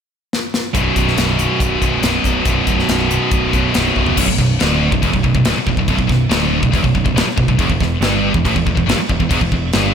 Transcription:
0.33 snare medium
0.54 snare medium
0.74 0.89 B0 medium
0.74 1.82 B1 medium
0.74 1.80 F#2 medium
0.74 1.79 B2 loud
0.74 kick loud
0.74 closed hi-hat medium
0.96 1.10 B0 medium
0.96 kick medium
0.96 closed hi-hat medium
1.07 snare soft
1.17 1.46 B0 medium
1.17 snare medium
1.17 closed hi-hat medium
1.38 2.01 B1 medium
1.38 2.01 F#2 medium
1.38 2.04 B2 medium
1.38 closed hi-hat medium
1.60 1.74 B0 loud
1.60 kick loud
1.60 closed hi-hat medium
1.79 1.96 B0 medium
1.79 2.02 B1 medium
1.79 2.01 F#2 medium
1.79 2.05 B2 medium
1.79 kick medium
1.79 closed hi-hat medium
2.02 2.17 B0 medium
2.02 2.44 B1 medium
2.02 2.45 F#2 medium
2.02 2.47 B2 medium
2.02 snare loud
2.02 closed hi-hat medium
2.24 2.39 B0 loud
2.24 kick medium
2.24 closed hi-hat medium
2.44 2.60 B0 medium
2.44 3.51 B1 medium
2.44 3.51 F#2 loud
2.44 3.49 B2 loud
2.44 kick loud
2.44 closed hi-hat medium
2.67 2.82 B0 medium
2.67 kick medium
2.67 closed hi-hat medium
2.79 snare soft
2.89 3.17 B0 medium
2.89 snare loud
2.89 closed hi-hat medium
3.09 3.72 B1 medium
3.09 3.73 F#2 medium
3.09 3.72 B2 medium
3.09 closed hi-hat medium
3.31 3.46 B0 medium
3.31 kick loud
3.31 closed hi-hat medium
3.51 3.67 B0 medium
3.51 3.72 B1 medium
3.51 3.73 F#2 medium
3.51 3.72 B2 medium
3.51 kick medium
3.51 closed hi-hat medium
3.73 3.89 B0 medium
3.73 4.15 B1 medium
3.73 4.16 F#2 medium
3.73 4.17 B2 medium
3.73 snare loud
3.73 closed hi-hat medium
3.96 4.10 B0 medium
3.96 kick medium
4.06 floor tom medium
4.17 4.27 B0 loud
4.17 4.27 B1 loud
4.17 kick loud
4.17 crash loud
4.17 crash medium
4.28 4.38 B0 medium
4.28 4.37 B1 medium
4.28 kick medium
4.38 4.58 B0 medium
4.38 4.56 B1 medium
4.38 kick medium
4.38 snare soft
4.59 4.90 D1 medium
4.59 4.91 D2 loud
4.59 snare loud
4.59 crash medium
4.91 5.02 B0 medium
4.91 5.02 B1 medium
4.91 kick loud
5.02 5.13 E1 loud
5.02 5.12 E2 loud
5.02 kick loud
5.02 crash medium
5.13 5.23 B0 medium
5.13 5.22 B1 medium
5.13 kick medium
5.23 5.34 B0 medium
5.23 5.34 B1 medium
5.23 kick medium
5.35 5.45 B0 medium
5.35 5.45 B1 medium
5.35 kick medium
5.45 5.55 D1 loud
5.45 5.55 D2 loud
5.45 snare loud
5.45 crash medium
5.58 muted distorted electric guitar stroke medium
5.67 5.77 B0 medium
5.67 5.77 B1 medium
5.67 kick medium
5.77 5.87 B0 medium
5.77 5.87 B1 medium
5.77 kick medium
5.88 5.98 B0 medium
5.88 5.96 B1 loud
5.88 kick loud
5.88 crash medium
5.97 6.08 B0 medium
5.97 6.06 B1 medium
5.97 kick medium
6.07 6.29 B0 medium
6.07 6.25 B1 medium
6.07 kick medium
6.07 snare soft
6.29 6.60 D1 medium
6.29 6.61 D2 loud
6.29 snare loud
6.29 crash medium
6.62 6.73 B0 medium
6.62 6.72 B1 medium
6.62 kick medium
6.72 6.83 E1 medium
6.72 6.82 E2 loud
6.72 kick loud
6.72 crash medium
6.83 6.94 B0 medium
6.83 6.94 B1 medium
6.83 kick medium
6.95 7.05 B0 medium
6.95 7.03 B1 medium
6.95 kick medium
7.04 7.14 B0 medium
7.04 7.16 B1 medium
7.04 kick medium
7.14 7.25 D1 loud
7.14 7.26 D2 loud
7.14 snare loud
7.14 crash medium
7.27 muted distorted electric guitar stroke medium
7.37 7.47 B0 medium
7.37 7.47 B1 medium
7.37 kick medium
7.48 7.58 B0 medium
7.48 7.58 B1 medium
7.48 kick medium
7.58 7.69 E1 loud
7.58 7.69 E2 loud
7.58 kick loud
7.58 crash medium
7.69 7.79 E1 medium
7.69 7.81 E2 medium
7.69 kick medium
7.80 8.00 E1 medium
7.80 7.98 E2 medium
7.80 kick medium
7.80 snare soft
8.01 8.31 G1 medium
8.01 8.34 G2 loud
8.01 snare loud
8.01 crash medium
8.34 8.44 E1 medium
8.34 8.44 E2 medium
8.34 kick loud
8.45 8.55 A1 medium
8.45 8.55 A2 loud
8.45 kick medium
8.45 crash medium
8.56 8.65 E1 medium
8.56 8.65 E2 medium
8.56 kick medium
8.66 8.76 E1 medium
8.66 8.74 E2 medium
8.66 kick medium
8.75 8.86 E1 medium
8.75 8.86 E2 medium
8.75 kick medium
8.86 8.97 G1 loud
8.86 8.97 G2 loud
8.86 snare loud
8.86 crash medium
8.97 muted picked electric bass stroke soft
8.97 muted distorted electric guitar stroke medium
9.09 9.19 E1 medium
9.09 9.18 E2 medium
9.09 kick medium
9.20 9.30 E1 medium
9.20 9.28 E2 medium
9.20 kick medium
9.29 9.40 E1 medium
9.29 9.40 E2 loud
9.29 kick loud
9.29 crash medium
9.41 9.51 E1 medium
9.41 9.51 E2 medium
9.41 kick medium
9.52 9.72 E1 medium
9.52 9.69 E2 medium
9.52 kick medium
9.73 9.94 G1 medium
9.73 9.94 G2 loud
9.73 snare loud
9.73 crash soft

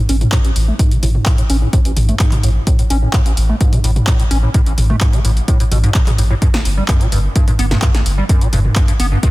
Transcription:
0.09 0.24 A1 medium
0.09 0.16 C#4 loud
0.09 open hi-hat loud
0.21 0.27 A2 medium
0.21 closed hi-hat soft
0.21 mid tom medium
0.32 0.39 A2 loud
0.32 kick loud
0.32 clap loud
0.32 closed hi-hat medium
0.45 0.51 A1 medium
0.45 closed hi-hat medium
0.56 0.71 A1 medium
0.56 open hi-hat loud
0.68 0.74 A3 medium
0.79 0.93 G#2 medium
0.79 kick loud
0.79 closed hi-hat medium
0.91 0.98 C#3 loud
0.91 closed hi-hat medium
1.03 1.18 A1 medium
1.03 1.09 A2 medium
1.03 mid tom medium
1.03 open hi-hat loud
1.15 mid tom medium
1.26 1.36 A2 medium
1.26 kick loud
1.26 clap loud
1.26 closed hi-hat medium
1.38 1.42 A2 medium
1.38 closed hi-hat medium
1.50 1.65 A1 medium
1.50 1.56 C#4 medium
1.50 open hi-hat loud
1.62 1.68 A2 medium
1.73 1.80 A2 loud
1.73 kick loud
1.73 closed hi-hat medium
1.85 1.91 A1 medium
1.85 closed hi-hat soft
1.97 2.12 A1 medium
1.97 mid tom medium
1.97 open hi-hat loud
2.09 2.15 A3 medium
2.09 closed hi-hat soft
2.19 2.34 G#2 medium
2.19 kick loud
2.19 clap loud
2.19 closed hi-hat medium
2.32 2.38 C#3 loud
2.32 clap soft
2.32 closed hi-hat medium
2.32 mid tom loud
2.43 2.58 A1 medium
2.43 2.50 A2 medium
2.43 open hi-hat loud
2.67 2.77 A2 medium
2.67 kick loud
2.67 closed hi-hat medium
2.79 2.83 A2 medium
2.79 closed hi-hat soft
2.90 3.05 A1 medium
2.90 2.97 C#4 loud
2.90 open hi-hat loud
3.02 3.09 A2 medium
3.13 3.20 A2 loud
3.13 kick loud
3.13 clap loud
3.13 closed hi-hat medium
3.26 3.32 A1 medium
3.26 closed hi-hat soft
3.37 3.52 A1 medium
3.37 open hi-hat loud
3.49 3.56 A3 medium
3.61 3.74 G#2 medium
3.61 kick loud
3.61 closed hi-hat medium
3.73 3.79 C#3 loud
3.73 closed hi-hat soft
3.73 mid tom medium
3.84 3.99 A1 medium
3.84 3.91 A2 medium
3.84 open hi-hat loud
3.96 closed hi-hat soft
3.96 mid tom medium
4.07 4.17 A2 medium
4.07 kick loud
4.07 clap loud
4.07 closed hi-hat medium
4.20 4.23 A2 medium
4.20 closed hi-hat medium
4.31 4.46 A1 medium
4.31 4.38 C#4 loud
4.31 open hi-hat loud
4.43 4.49 A2 medium
4.54 4.61 A2 loud
4.54 kick loud
4.54 closed hi-hat medium
4.66 4.73 A1 medium
4.66 closed hi-hat soft
4.78 4.93 A1 loud
4.78 mid tom medium
4.78 open hi-hat loud
4.90 4.96 A3 medium
4.90 mid tom medium
5.01 5.15 G#2 medium
5.01 kick loud
5.01 clap loud
5.01 closed hi-hat medium
5.13 5.20 C#3 loud
5.13 closed hi-hat medium
5.25 5.40 A1 medium
5.25 5.31 A2 medium
5.25 open hi-hat loud
5.37 closed hi-hat soft
5.48 5.58 A2 medium
5.48 kick loud
5.48 closed hi-hat medium
5.60 5.64 A2 medium
5.60 closed hi-hat soft
5.72 5.87 A1 medium
5.72 5.78 B2 medium
5.72 mid tom medium
5.72 open hi-hat loud
5.84 5.90 G#2 loud
5.84 closed hi-hat soft
5.94 6.02 A2 medium
5.94 kick loud
5.94 clap loud
5.94 closed hi-hat medium
6.07 6.11 C#3 medium
6.07 clap soft
6.07 closed hi-hat soft
6.07 mid tom loud
6.18 6.33 A1 loud
6.18 6.22 A2 medium
6.18 open hi-hat loud
6.31 6.34 A2 loud
6.42 6.49 G2 loud
6.42 kick loud
6.42 closed hi-hat medium
6.54 6.60 G1 medium
6.54 snare medium
6.54 closed hi-hat soft
6.65 6.80 G1 medium
6.65 open hi-hat loud
6.77 6.84 G3 medium
6.88 7.02 F#2 medium
6.88 kick loud
6.88 clap loud
6.88 closed hi-hat medium
7.01 7.07 B2 loud
7.01 closed hi-hat soft
7.12 7.27 G1 medium
7.12 7.19 G2 medium
7.12 open hi-hat loud
7.36 7.46 G2 medium
7.36 kick loud
7.36 closed hi-hat medium
7.48 7.51 G2 medium
7.48 closed hi-hat soft
7.48 mid tom medium
7.59 7.74 G1 medium
7.59 7.66 B3 loud
7.59 open hi-hat loud
7.71 7.77 G2 medium
7.71 snare medium
7.71 closed hi-hat soft
7.71 mid tom medium
7.82 7.89 G2 loud
7.82 kick loud
7.82 clap loud
7.82 closed hi-hat medium
7.95 8.01 G1 medium
7.95 snare medium
7.95 closed hi-hat medium
8.06 8.21 G1 medium
8.06 open hi-hat loud
8.18 8.24 G3 medium
8.29 8.43 F#2 medium
8.29 kick loud
8.29 closed hi-hat medium
8.41 8.48 B2 loud
8.41 closed hi-hat medium
8.53 8.68 G1 medium
8.53 8.59 G2 medium
8.53 mid tom medium
8.53 open hi-hat loud
8.65 mid tom medium
8.76 8.86 G2 medium
8.76 kick loud
8.76 clap loud
8.76 closed hi-hat medium
8.88 8.92 G2 medium
8.88 closed hi-hat medium
9.00 9.15 G1 medium
9.00 9.06 B3 loud
9.00 open hi-hat medium
9.12 9.18 G2 medium
9.23 9.30 G2 loud
9.23 kick loud
9.23 closed hi-hat medium

